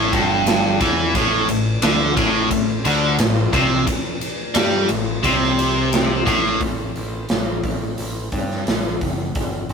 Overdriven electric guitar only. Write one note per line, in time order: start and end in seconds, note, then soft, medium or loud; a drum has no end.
0.00 0.12 A2 loud
0.13 0.80 G2 medium
0.80 1.14 E3 loud
1.15 1.48 A2 loud
1.49 1.76 A2 medium
1.83 2.16 D3 loud
2.16 2.49 A2 loud
2.51 2.78 A2 medium
2.85 3.18 D3 loud
3.19 3.46 A2 medium
3.53 3.86 C3 loud
3.87 muted overdriven electric guitar stroke medium
4.55 4.88 G3 loud
4.89 5.17 A2 medium
5.23 6.25 C3 loud
6.25 6.59 A2 loud